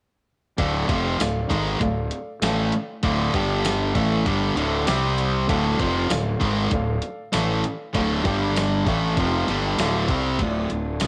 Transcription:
0.58 fingered electric bass D1, overdriven electric guitar D2 A2 D3, upright piano A4 D5 F5, kick, closed hi-hat
0.89 fingered electric bass F1, overdriven electric guitar F2 C3 F3, kick, closed hi-hat
1.19 fingered electric bass D1, overdriven electric guitar D2 A2, upright piano A4 D5 F5, snare, closed hi-hat, tambourine
1.49 fingered electric bass G#1, overdriven electric guitar G#2 D#3 G#3, kick, closed hi-hat
1.80 fingered electric bass D1, overdriven electric guitar D2 A2, upright piano A4 D5 F5, kick, closed hi-hat
2.11 closed hi-hat
2.41 fingered electric bass A1, overdriven electric guitar A2 E3 A3, upright piano A4 D5 F5, snare, closed hi-hat, tambourine
2.72 closed hi-hat
3.03 fingered electric bass D1, overdriven electric guitar D2 A2 D3, upright piano A4 D5 F5, kick, closed hi-hat
3.34 fingered electric bass G1, overdriven electric guitar G2 D3 G3, upright piano G4 D5 G5, kick, closed hi-hat
3.65 snare, closed hi-hat, tambourine
3.94 fingered electric bass A1, overdriven electric guitar A2 E3 A3, upright piano A4 D5 F5, kick, closed hi-hat
4.25 fingered electric bass G1, overdriven electric guitar G2 D3 G3, kick, closed hi-hat
4.55 fingered electric bass D1, overdriven electric guitar D2 A2 D3, closed hi-hat
4.86 fingered electric bass C2, overdriven electric guitar C3 G3 C4, upright piano G4 C5 G5, snare, closed hi-hat, tambourine
5.18 closed hi-hat
5.47 fingered electric bass D1, overdriven electric guitar D2 A2 D3, upright piano A4 D5 F5, kick, closed hi-hat
5.78 fingered electric bass F1, overdriven electric guitar F2 C3 F3, kick, closed hi-hat
6.09 fingered electric bass D1, overdriven electric guitar D2 A2, upright piano A4 D5 F5, snare, closed hi-hat, tambourine
6.40 fingered electric bass G#1, overdriven electric guitar G#2 D#3 G#3, kick, closed hi-hat
6.71 fingered electric bass D1, overdriven electric guitar D2 A2, upright piano A4 D5 F5, kick, closed hi-hat
7.02 closed hi-hat
7.32 fingered electric bass A1, overdriven electric guitar A2 E3 A3, upright piano A4 D5 F5, snare, closed hi-hat, tambourine
7.64 closed hi-hat
7.93 fingered electric bass D1, overdriven electric guitar D2 A2 D3, upright piano A4 D5 F5, kick, closed hi-hat
8.23 fingered electric bass G1, overdriven electric guitar G2 D3 G3, upright piano G4 D5 G5, kick, closed hi-hat
8.56 snare, closed hi-hat, tambourine
8.85 fingered electric bass A1, overdriven electric guitar A2 E3 A3, upright piano A4 D5 F5 G5, kick, closed hi-hat
9.05 upright piano A5
9.16 fingered electric bass F1, overdriven electric guitar F2 C3 F3, upright piano A5, kick, closed hi-hat
9.33 upright piano F5
9.48 fingered electric bass G1, overdriven electric guitar G2 D3 G3, closed hi-hat
9.67 upright piano G5
9.78 fingered electric bass D1, overdriven electric guitar D2 A2 D3, upright piano A4 D5 F5, snare, closed hi-hat, tambourine
10.08 fingered electric bass C2, overdriven electric guitar C3 G3 C4, upright piano D5, kick, closed hi-hat
10.38 fingered electric bass D1, overdriven electric guitar D2 A2 D3, steel-string acoustic guitar D3 A3 D4 F4, kick, closed hi-hat
10.70 fingered electric bass D1, overdriven electric guitar D2 A2, closed hi-hat
11.00 fingered electric bass C2, overdriven electric guitar C3 G3 C4, steel-string acoustic guitar D3 A3 D4 F4, snare, closed hi-hat, tambourine

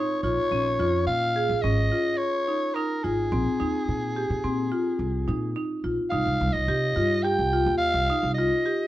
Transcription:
Already playing: marimba D#4, soprano saxophone C#5
0.23 upright bass A#1, marimba F4, soprano saxophone C#5
0.51 upright bass A#1, marimba C#4
0.79 upright bass F2, marimba F4
1.07 upright bass A#2, soprano saxophone F5
1.36 marimba G#4
1.49 upright bass A#1
1.62 upright bass G#1, marimba C#4, soprano saxophone D#5
1.92 marimba F4
2.18 soprano saxophone C#5
2.48 marimba D#4
2.74 marimba D#4, soprano saxophone A#4
3.03 upright bass G#1, marimba F4, soprano saxophone G#4
3.32 upright bass A#1, marimba C4
3.60 upright bass D#2, marimba D#4
3.88 upright bass A#2
4.16 marimba G4
4.30 upright bass A#2
4.44 upright bass A#2, marimba C4
4.72 marimba F4
4.99 upright bass C2
5.28 upright bass A#2, marimba D#4
5.56 marimba D#4
5.84 upright bass A#1, marimba F4
6.10 upright bass C2, marimba D#4, soprano saxophone F5
6.26 upright bass C2
6.41 upright bass C2
6.52 upright bass C2, soprano saxophone D#5
6.68 upright bass C3, marimba G4
6.96 upright bass G2, marimba F4
7.22 marimba G4, soprano saxophone G5
7.39 upright bass C2
7.53 marimba F4
7.66 upright bass D#2
7.78 soprano saxophone F5
7.94 upright bass C2
8.10 marimba D#4
8.23 upright bass C2
8.34 marimba F4, soprano saxophone D#5
8.65 marimba G4

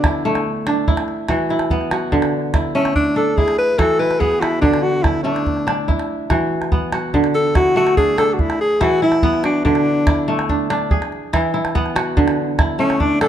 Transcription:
Already playing: kora D3 B3 F#4, alto saxophone D4
0.04 kora E4, calabash thump, calabash click
0.25 kora A3
0.35 calabash click
0.67 kora D4, calabash click
0.88 kora E4, calabash thump
0.97 calabash click
1.08 calabash click
1.29 kora E3 F#4, calabash thump, calabash click
1.49 kora E4, calabash click
1.59 calabash click
1.70 kora B3, calabash thump
1.81 calabash click
1.91 kora F#4, calabash click
2.12 kora D3, calabash thump
2.22 calabash click
2.54 kora E4, calabash thump, calabash click
2.75 kora A3, alto saxophone C#4
2.85 calabash click
2.96 alto saxophone D4, calabash thump
3.16 kora D4, alto saxophone A4
3.37 kora E4, alto saxophone G#4, calabash thump
3.48 calabash click
3.58 alto saxophone B4, calabash click
3.78 kora E3 F#4, alto saxophone A4, calabash thump, calabash click
3.99 kora E4, alto saxophone B4, calabash click
4.11 calabash click
4.19 kora B3, alto saxophone G#4, calabash thump
4.32 calabash click
4.41 alto saxophone E4, kora F#4, calabash click
4.61 kora D3, alto saxophone D4, calabash thump, calabash click
4.74 calabash click
4.82 alto saxophone F#4
5.03 alto saxophone E4, kora E4, calabash thump, calabash click
5.15 calabash click
5.23 kora A3, alto saxophone D4
5.36 calabash click
5.46 calabash thump, calabash click
5.57 calabash click
5.67 kora D4, calabash click
5.88 kora E4, calabash thump, calabash click
5.99 calabash click
6.30 kora E3 F#4, calabash thump, calabash click
6.62 calabash click
6.72 kora B3, calabash thump
6.92 kora F#4, calabash click
7.14 kora D3, calabash thump
7.24 calabash click
7.34 alto saxophone A4
7.55 kora E4, alto saxophone F#4, calabash thump, calabash click
7.76 kora A3, alto saxophone F#4
7.87 calabash click
7.97 kora D4, alto saxophone G#4, calabash thump
8.18 kora D4, alto saxophone A4, calabash click
8.33 alto saxophone F#4
8.39 alto saxophone E4, calabash thump
8.50 calabash click
8.60 alto saxophone G#4, calabash click
8.81 kora E3 E4, alto saxophone F#4, calabash thump, calabash click
9.02 kora E4, alto saxophone E4, calabash click
9.12 calabash click
9.23 kora B3, calabash thump
9.33 calabash click
9.43 alto saxophone D4, kora F#4, calabash click
9.65 kora D3, alto saxophone D4, calabash thump
9.75 calabash click
10.07 kora E4, calabash thump, calabash click
10.28 kora A3
10.39 calabash click
10.49 kora D4, calabash thump
10.70 kora D4, calabash click
10.91 kora G#4, calabash thump
11.02 calabash click
11.12 calabash click
11.33 kora E3 E4, calabash thump, calabash click
11.54 kora E4, calabash click
11.65 calabash click
11.75 kora B3, calabash thump
11.86 calabash click
11.96 kora F#4, calabash click
12.17 kora D3, calabash thump
12.28 calabash click
12.59 kora E4, calabash thump, calabash click
12.79 kora A3, alto saxophone C#4
12.90 calabash click
13.00 kora D4, alto saxophone D4, calabash thump
13.21 kora D4, alto saxophone A4, calabash click

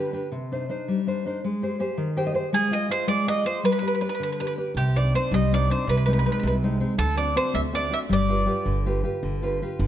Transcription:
Already playing: nylon-string guitar D3 D4 G4 B4
0.13 nylon-string guitar D4 G4 B4
0.32 nylon-string guitar C3
0.52 nylon-string guitar D4 D#4 C5
0.69 nylon-string guitar D4 D#4 C5
0.88 nylon-string guitar G3
1.07 nylon-string guitar D4 D#4 C5
1.26 nylon-string guitar D4 D#4 C5
1.44 nylon-string guitar G#3
1.62 nylon-string guitar G4 G#4 C5
1.80 nylon-string guitar G4 G#4 C5
1.97 nylon-string guitar D#3
2.17 nylon-string guitar G4 G#4 C5 G5
2.27 nylon-string guitar D#5
2.34 nylon-string guitar G4 G#4 C5
2.53 nylon-string guitar G#3, mandolin G#4
2.71 nylon-string guitar F4 G#4 D#5, mandolin D#5
2.90 nylon-string guitar F4 G#4 D#5, mandolin C5
3.07 nylon-string guitar G#3, mandolin D5
3.27 nylon-string guitar F4 G#4 D#5, mandolin D#5
3.45 nylon-string guitar F4 G#4 D#5, mandolin C5
3.63 nylon-string guitar G3, mandolin B4
3.72 mandolin B4
3.79 nylon-string guitar G4 B4, mandolin B4
3.83 nylon-string guitar D5
3.87 mandolin B4
3.95 mandolin B4
4.01 nylon-string guitar G4 B4 D5, mandolin B4
4.09 mandolin B4
4.15 mandolin B4
4.20 nylon-string guitar D3, mandolin B4
4.32 mandolin B4
4.40 nylon-string guitar G4 B4 D5, mandolin B4
4.47 mandolin B4
4.57 nylon-string guitar G4 B4 D5
4.75 upright bass C2, nylon-string guitar C3, mandolin G4
4.96 nylon-string guitar C4 D4 D#4, mandolin D5
5.14 nylon-string guitar C4 D4 D#4, mandolin C5
5.31 upright bass C2, nylon-string guitar G3, mandolin D#5
5.52 nylon-string guitar C4 D4 D#4, mandolin D5
5.70 nylon-string guitar C4 D4 D#4, mandolin C5
5.87 upright bass C2, nylon-string guitar C3, mandolin B4
5.97 mandolin B4
6.06 nylon-string guitar G#3 C4 D#4, mandolin B4
6.13 mandolin B4
6.19 mandolin B4
6.25 nylon-string guitar G#3 C4 D#4, mandolin B4
6.32 mandolin B4
6.39 upright bass C2, nylon-string guitar C3, mandolin B4
6.47 mandolin B4
6.63 nylon-string guitar G#3 C4 D#4
6.80 nylon-string guitar G#3 C4 D#4
6.98 upright bass D2, nylon-string guitar D3, mandolin A4
7.17 nylon-string guitar C4 D4 F#4, mandolin D5
7.36 nylon-string guitar C4 D4 F#4, mandolin C5
7.54 upright bass D2, nylon-string guitar A3, mandolin E5
7.73 nylon-string guitar C4 D4 F#4, mandolin D5
7.90 nylon-string guitar C4 D4 F#4, mandolin E5
8.09 upright bass G1, nylon-string guitar G3, mandolin D5
8.29 nylon-string guitar F4 G4 B4
8.46 nylon-string guitar F4 G4 B4
8.65 upright bass G1, nylon-string guitar D3
8.86 nylon-string guitar F4 G4 B4
9.04 nylon-string guitar F4 G4 B4
9.23 upright bass G1, nylon-string guitar D3
9.42 nylon-string guitar F4 G4 B4
9.62 nylon-string guitar F4 G4 B4
9.79 upright bass G1, nylon-string guitar D3

